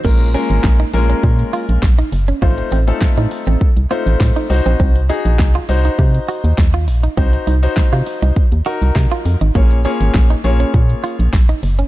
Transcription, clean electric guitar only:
\new Staff \with { instrumentName = "Clean electric guitar" } { \time 4/4 \key bes \minor \tempo 4 = 101 bes16 r16 des'16 r8 ees'16 r16 des'16 r8 f'16 r8 ees'16 r16 des'16 | f'16 r16 c'16 r8 ees'16 r16 c'16 r8 f'16 r8 ees'16 r16 c'16 | c'16 r16 ees'16 r8 f'16 r16 ees'16 r8 ges'16 r8 f'16 r16 ees'16 | c'16 r16 ees'16 r8 f'16 r16 ees'16 r8 ges'16 r8 f'16 r16 ees'16 |
bes16 r16 des'16 r8 ees'16 r16 des'16 r8 f'16 r8 ees'16 r16 des'16 | }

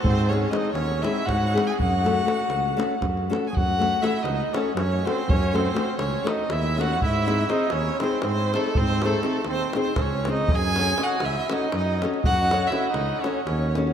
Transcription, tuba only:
\new Staff \with { instrumentName = "Tuba" } { \clef bass \time 7/8 \tempo 4 = 120 gis,4. dis,4 gis,4 | fis,4. cis,4 fis,4 | fis,4. cis,8 r8 fis,4 | fis,4. cis,8 r8 dis,4 |
gis,4. dis,8 r8 gis,4 | gis,4. dis,8 r8 cis,4 | fis,4. cis,8 r8 fis,4 | fis,4. cis,8 r8 dis,4 | }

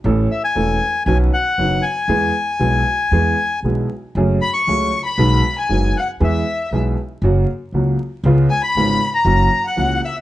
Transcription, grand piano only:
\new Staff \with { instrumentName = "Grand piano" } { \clef bass \time 4/4 \key e \major \tempo 4 = 118 <a,, a, e a cis' a'>8 r8 <e,, e, e a cis' a'>8 r8 <b,, b, dis b cis' fis'>8 r8 <fis,, fis, dis b cis' fis'>8 r8 | <e, e gis b gis'>8 r8 <b,, b, e gis b gis'>8 r8 <e, e gis b gis'>8 r8 <b,, b, e gis b gis'>8 r8 | <fis, fis a cis' gis'>8 r8 <cis, cis fis a cis' gis'>8 r8 <b,, b, dis gis b fis'>8 r8 <fis,, fis, dis gis b fis'>8 r8 | <e, e gis b gis'>8 r8 <b,, b, e gis b gis'>8 r8 <fis, cis fis ais fis'>8 r8 <cis, cis fis ais fis'>8 r8 |
<cis, cis gis b eis'>8 r8 <gis,, gis, cis gis b eis'>8 r8 <fis, e fis ais cis' fis'>8 r8 <cis, cis e ais cis' fis'>8 r8 | }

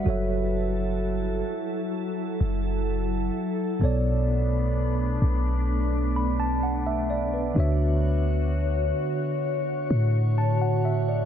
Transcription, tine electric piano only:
\new Staff \with { instrumentName = "Tine electric piano" } { \time 4/4 \key b \minor \tempo 4 = 64 << { fis''16 r2. r8. | r2 r8 b''16 a''16 fis''16 e''16 d''16 b'16~ | b'16 r2 r8. a''16 fis''16 e''16 d''16 | } \\ { <fis fis' a' cis'' e''>1 | <b, b a' cis'' d''>1 | <d d' fis' cis'' e''>1 | } >> }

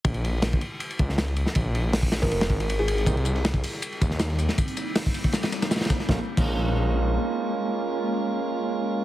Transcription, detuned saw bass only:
\new Staff \with { instrumentName = "Detuned saw bass" } { \clef bass \time 4/4 \key bes \dorian \tempo 4 = 159 bes,,4. r4 des,4~ des,16 r16 | bes,,2 f,,8 aes,,4. | c,4. r4 ees,4~ ees,16 r16 | r1 |
bes,,16 r8 bes,,2~ bes,,16 r4 | r1 | }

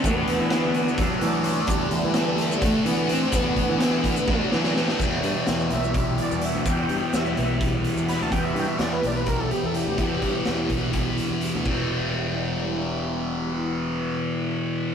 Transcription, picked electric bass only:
\new Staff \with { instrumentName = "Picked electric bass" } { \clef bass \time 7/8 \key e \minor \tempo 4 = 126 e,8 e,16 e4~ e16 e,16 r16 e4 | e,8 e,16 e4~ e16 e,16 r16 e4 | e,8 e,16 e4~ e16 e,16 r16 e4 | e,8 g,16 r16 e,8 b,,4~ b,,16 e,8 d,16 |
e,8 g,16 r16 e,8 b,,4~ b,,16 e,8 d,16 | e,8 g,16 r16 e,8 b,,4~ b,,16 e,8 d,16 | e,8 g,16 r16 e,8 b,,4~ b,,16 e,8 d,16 | e,,2.~ e,,8~ |
e,,2.~ e,,8 | }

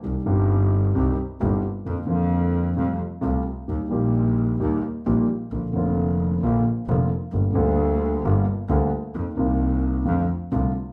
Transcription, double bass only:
\new Staff \with { instrumentName = "Double bass" } { \clef bass \time 4/4 \key bes \major \tempo 4 = 132 c,8 g,,4. c,8 r8 g,,8 r8 | f,8 f,4. f,8 r8 c,8 r8 | ees,8 bes,,4. ees,8 r8 bes,,8 r8 | bes,,8 f,,4. bes,,8 r8 f,,8 r8 |
g,,8 d,4. g,,8 r8 d,8 r8 | f,8 c,4. f,8 r8 c,8 r8 | }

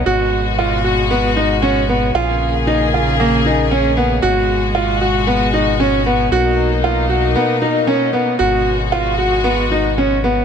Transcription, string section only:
\new Staff \with { instrumentName = "String section" } { \time 4/4 \key gis \dorian \tempo 4 = 115 << { <gis fis'>1 | <ais gis'>1 | <gis fis'>1 | <ais dis'>1 |
<gis fis'>1 | } \\ { b,1 | cis1 | b,1~ | b,1~ |
b,1 | } >> }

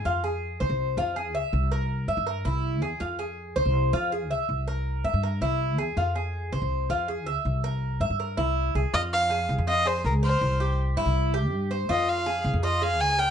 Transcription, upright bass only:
\new Staff \with { instrumentName = "Upright bass" } { \clef bass \time 4/4 \key f \minor \tempo 4 = 162 f,4. c,16 c,8. f,4 des,16 r16 | c,4. g,16 g,8. c,4 e,16 r16 | f,4. c,16 c,8. f,4 c,16 r16 | c,4. g,16 g,8. c,4 e,16 r16 |
f,4. c,16 c,8. f,4 des,16 r16 | c,4. g,16 g,8. c,4 c,16 r16 | f,4. c,16 f,4~ f,16 des,4 | c,4. g,16 c,4~ c,16 g,4 |
f,4. c,16 f,4~ f,16 des,4 | }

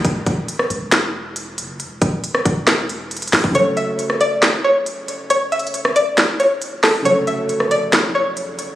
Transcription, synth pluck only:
\new Staff \with { instrumentName = "Synth pluck" } { \time 4/4 \key fis \minor \tempo 4 = 137 r1 | r1 | cis''8 e''4 d''4 cis''4. | cis''8 e''4 d''4 cis''4 a'8 |
cis''8 e''4 d''4 cis''4. | }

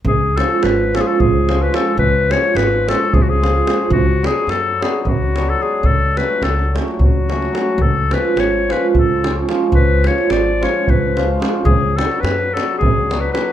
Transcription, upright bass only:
\new Staff \with { instrumentName = "Upright bass" } { \clef bass \time 7/8 \tempo 4 = 109 cis,4 gis,,4 cis,4. | cis,4 gis,,4 cis,4. | cis,4 fis,4 cis,4. | cis,4 cis,4 cis,4. |
cis,4 gis,,4 cis,4. | cis,4 gis,,4 cis,4. | cis,4 fis,4 cis,4. | }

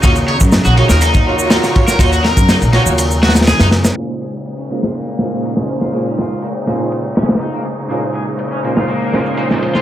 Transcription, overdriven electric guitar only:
\new Staff \with { instrumentName = "Overdriven electric guitar" } { \time 4/4 \key bes \minor \tempo 4 = 122 ees'16 r16 des''16 r8 ges'16 ees'16 bes'16 ees'4 ees'16 r8 bes'16 | ees'16 ges'16 bes'8 ees'16 r16 ees'16 r8. ges'16 r16 aes'16 ees'16 r8 | bes16 r16 aes'16 r8 des'16 bes16 f'16 bes4 bes16 r8 f'16 | bes16 des'16 f'8 bes16 r16 bes16 r8. des'16 r16 ees'16 bes16 r8 |
bes16 r16 aes'16 r8 des'16 bes16 f'16 bes4 bes16 r8 f'16 | }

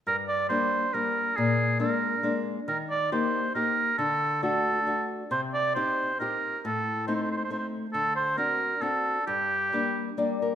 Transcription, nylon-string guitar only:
\new Staff \with { instrumentName = "Nylon-string guitar" } { \time 3/4 \key g \minor \tempo 4 = 137 << { r2. | r2. | r2. | r2. |
r2. | r2. | r2. | r2 d''8 bes'8 | } \\ { g,4 <g bes d'>4 <g bes d'>4 | bes,4 <aes bes d'>4 <aes bes d'>4 | ees4 <bes ees' g'>4 <bes ees' g'>4 | d4 <a d' fis'>4 <a d' fis'>4 |
c4 <c' ees' g'>4 <c' ees' g'>4 | a,4 <a c' ees'>4 <a c' ees'>4 | d4 <c' d' fis'>4 <c' d' fis'>4 | g,4 <g bes d'>4 <g bes d'>4 | } >> }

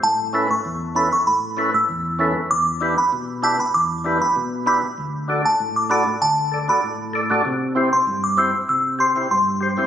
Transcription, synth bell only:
\new Staff \with { instrumentName = "Synth bell" } { \time 4/4 \key d \mixolydian \tempo 4 = 97 a''16 r8 cis'''16 r8 b''16 cis'''16 b''16 r8 e'''16 r4 | d'''16 r8 b''16 r8 a''16 b''16 d'''16 r8 b''16 r8 b''16 r16 | r8. a''16 r16 d'''16 b''16 r16 a''16 r8 b''16 r4 | r8. c'''16 r16 d'''16 e'''16 r16 e'''16 r16 c'''16 r16 c'''8. r16 | }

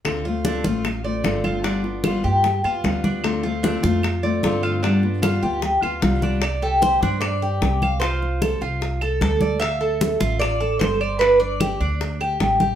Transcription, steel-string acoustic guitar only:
\new Staff \with { instrumentName = "Steel-string acoustic guitar" } { \time 4/4 \key d \dorian \tempo 4 = 151 <d a c' f'>8 <a c' f'>8 <d a c' f'>8 <a c' f'>8 r8 <a c' f'>8 <d a c' f'>4 | <g b f'>8 <b f'>8 <g b f'>8 <b f'>8 r8 <b f'>8 <g b f'>4 | <d a c' f'>8 <a c' f'>8 <d a c' f'>8 <a c' f'>8 r8 <a c' f'>8 <d a c' f'>4 | <g b f'>8 <b f'>8 <g b f'>8 <b f'>8 r8 <b f'>8 <g b f'>4 |
r1 | r1 | r1 | r1 | }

